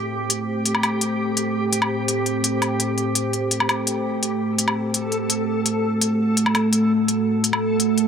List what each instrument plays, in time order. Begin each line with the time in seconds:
Already playing: ambient pad A3 A4 C5 E5, synth texture G4
0.30 closed hi-hat
0.66 closed hi-hat
0.75 low woodblock
0.83 closed hi-hat, low woodblock
1.01 closed hi-hat
1.37 closed hi-hat
1.73 closed hi-hat
1.82 low woodblock
2.08 closed hi-hat
2.26 closed hi-hat
2.44 closed hi-hat
2.62 closed hi-hat, low woodblock
2.80 closed hi-hat
2.98 closed hi-hat
3.13 ambient pad F#5, closed hi-hat
3.33 closed hi-hat
3.51 closed hi-hat
3.60 low woodblock
3.69 closed hi-hat, low woodblock
3.86 synth texture A4, closed hi-hat
4.23 closed hi-hat
4.58 closed hi-hat
4.68 low woodblock
4.94 closed hi-hat
5.12 closed hi-hat
5.30 closed hi-hat
5.66 closed hi-hat
6.01 closed hi-hat
6.37 closed hi-hat
6.46 low woodblock
6.55 closed hi-hat, low woodblock
6.73 closed hi-hat
7.08 closed hi-hat
7.44 closed hi-hat
7.53 low woodblock
7.80 closed hi-hat
7.98 closed hi-hat